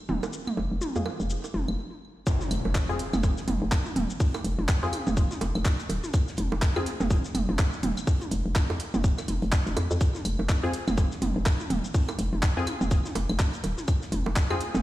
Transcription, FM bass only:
0.09 D#1
0.57 F1
0.72 F1
0.96 F2
1.20 F1
1.54 F1
1.68 F1
2.51 F1
2.65 F1
2.89 F2
3.13 F1
3.48 F1
3.62 F1
3.96 D#1
4.44 F1
4.59 F1
4.83 F2
5.07 F1
5.41 F1
5.55 F1
5.90 D#1
6.38 F1
6.52 F1
6.76 F2
7.00 F1
7.35 F1
7.49 F1
7.83 D#1
8.31 F1
8.46 F1
8.70 F2
8.94 F1
9.28 F1
9.42 F1
9.67 F1
9.77 F2
9.91 F2
10.25 F1
10.39 F1
10.63 F2
10.88 F1
11.22 F1
11.36 F1
11.70 D#1
12.19 F1
12.33 F1
12.57 F2
12.81 F1
13.15 F1
13.30 F1
13.64 D#1
14.12 F1
14.26 F1
14.50 F2
14.75 F1

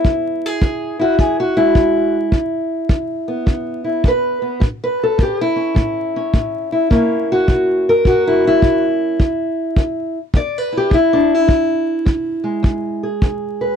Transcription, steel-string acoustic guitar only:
Already playing: G#3 B3 E4
0.06 E2
0.46 G#4
0.62 E2
0.99 E4 F#4
1.19 E2 G#4
1.40 F#4
1.57 G#3 E4
1.76 E2
2.32 E2
2.91 E2
3.28 B3
3.46 E2
3.84 E4
4.05 E2 B4
4.42 B3
4.60 A2
4.84 B4
5.03 A4
5.18 A2
5.23 G4
5.41 E4
5.56 C#4
5.75 A2
6.16 C#4
6.34 A2
6.72 E4
6.90 A#2 A#3 C#4 E4
7.32 F#4
7.48 A#2
7.89 A#4
8.05 A#2 F#4
8.27 E4
8.45 C#4 E4
8.62 A#2
9.20 E2
9.78 E2
10.34 E2 D5
10.58 B4
10.72 E4
10.77 G4
10.90 E2 E4
11.13 D4
11.34 E4
11.48 E2
12.05 E2
12.44 G#3
12.63 E2
13.03 G#4
13.24 E2
13.61 B4

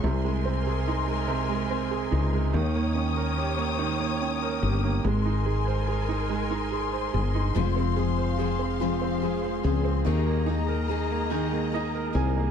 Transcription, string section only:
0.03 A#4 G#5 C6
2.54 C#5 G5 D#6
5.04 A#4 G#5 C6
7.56 G#4 F5
10.07 D#5 A#5

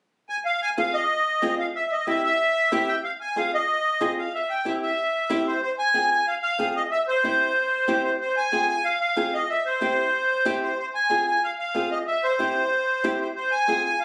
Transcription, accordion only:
0.29 G#5
0.45 F5
0.62 G#5
0.79 F5
0.94 D#5
1.59 F5
1.76 E5
1.87 E5
1.91 D#5
2.07 E5
2.24 E5
2.88 G5
3.04 F5
3.21 G#5
3.37 F5
3.54 D#5
4.18 F5
4.34 E5
4.50 G5
4.66 E5
4.83 E5
5.47 C5
5.62 C5
5.79 G#5
6.11 G#5
6.27 F5
6.43 F5
6.75 D#5
6.91 E5
7.08 C5
8.04 C5
8.20 C5
8.37 G#5
8.69 G#5
8.85 F5
9.00 F5
9.34 D#5
9.50 E5
9.66 C5
10.63 C5
10.79 C5
10.95 G#5
11.27 G#5
11.44 F5
11.59 F5
11.91 D#5
12.07 E5
12.24 C5
13.20 C5
13.36 C5
13.51 G#5
13.85 G#5
14.00 F5

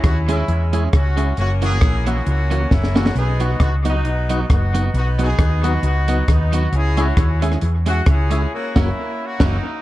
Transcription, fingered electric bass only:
0.04 D#2
0.48 E2
0.93 C#2
1.38 F#1
1.82 A#1
2.27 C#2
2.71 F#1
3.15 B1
3.60 C#2
4.04 B1
4.50 F#1
4.94 B1
5.39 D#2
5.83 C#2
6.28 D#2
6.72 C#2
7.17 D#2
7.62 E2
8.07 C#2
8.76 F#1
9.40 F#1

